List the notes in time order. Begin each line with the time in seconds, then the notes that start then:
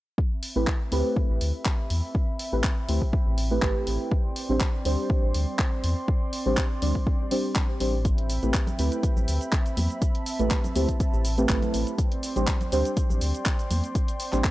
0.18 C4 E5 G5 B5, kick
0.43 open hi-hat
0.56 A1 A3 C4 E4 G4 B4
0.67 kick, clap
0.91 D2 A3 C4 E4 G4 B4, open hi-hat
1.16 kick
1.30 A1
1.41 D2, open hi-hat
1.65 kick, clap
1.90 E2, open hi-hat
2.15 kick
2.39 open hi-hat
2.52 A1 A3 C4 E4 G4 B4
2.64 kick, clap
2.88 D2 A3 C4 E4 G4 C5, open hi-hat
3.02 kick
3.13 kick
3.26 A1
3.38 open hi-hat
3.51 A3 C4 E4 G4 B4
3.62 A1 A3 C4 E4 G4 B4, kick, clap
3.87 A1, open hi-hat
4.11 D5 C6, kick
4.36 open hi-hat
4.49 A1 G3 C4 D4 G4 C5
4.60 kick, clap
4.85 D2 G3 C4 D4 G4 C5, open hi-hat
5.10 kick
5.23 A1
5.34 D2, open hi-hat
5.59 kick, clap
5.84 E2, open hi-hat
6.08 kick
6.33 open hi-hat
6.46 A1 G3 C4 D4 G4 C5
6.57 kick, clap
6.82 D2 G3 C4 D4 G4 D5, open hi-hat
6.95 kick
7.07 kick
7.31 G3 C4 D4 G4 C5, open hi-hat
7.55 kick, clap
7.80 A1 G3 C4 D4 G4 C5, open hi-hat
8.05 C4 E5 G5 B5, kick, closed hi-hat, shaker
8.18 closed hi-hat
8.30 open hi-hat, shaker
8.42 A1 A3 C4 E4 G4 B4, closed hi-hat, high conga, shaker
8.54 kick, clap, closed hi-hat, shaker
8.67 closed hi-hat, low conga, shaker
8.78 D2 A3 C4 E4 G4 B4, open hi-hat, shaker
8.92 closed hi-hat, shaker
9.03 kick, closed hi-hat, shaker
9.16 A1, low conga, shaker
9.28 D2, open hi-hat, shaker
9.41 closed hi-hat, shaker
9.52 kick, clap, closed hi-hat, shaker
9.66 closed hi-hat, shaker
9.77 E2, open hi-hat, high conga, low conga, shaker
9.90 closed hi-hat, shaker
10.02 A5, kick, closed hi-hat, shaker
10.15 closed hi-hat
10.26 open hi-hat, shaker
10.39 A1 A3 C4 E4 G4 B4, closed hi-hat, high conga, shaker
10.51 kick, clap, closed hi-hat, shaker
10.64 closed hi-hat, low conga, shaker
10.75 D2 A3 C4 E4 G4 C5, open hi-hat, high conga, shaker
10.89 kick, closed hi-hat, shaker
11.00 kick, closed hi-hat, shaker
11.13 A1, shaker
11.25 open hi-hat, shaker
11.38 A3 C4 E4 G4 B4, closed hi-hat, shaker
11.49 A1 A3 C4 E4 G4 B4, kick, clap, closed hi-hat, shaker
11.62 closed hi-hat, low conga, shaker
11.74 A1, open hi-hat, shaker
11.87 closed hi-hat, shaker
11.98 D5 G5 C6, kick, closed hi-hat, shaker
12.12 closed hi-hat
12.23 open hi-hat, shaker
12.36 A1 G3 C4 D4 G4 C5, closed hi-hat, high conga, shaker
12.47 kick, clap, closed hi-hat, shaker
12.61 closed hi-hat, low conga, shaker
12.72 D2 G3 C4 D4 G4 C5, open hi-hat, shaker
12.85 closed hi-hat, shaker
12.97 kick, closed hi-hat, shaker
13.10 A1, low conga, shaker
13.21 D2, open hi-hat, shaker
13.35 closed hi-hat, shaker
13.46 kick, clap, closed hi-hat, shaker
13.59 closed hi-hat, shaker
13.71 E2, open hi-hat, high conga, low conga, shaker
13.84 closed hi-hat, shaker
13.95 kick, closed hi-hat, shaker
14.08 closed hi-hat, shaker
14.20 open hi-hat, shaker
14.33 A1 G3 C4 D4 G4 C5, clap, closed hi-hat, high conga, shaker
14.44 kick, clap, closed hi-hat, shaker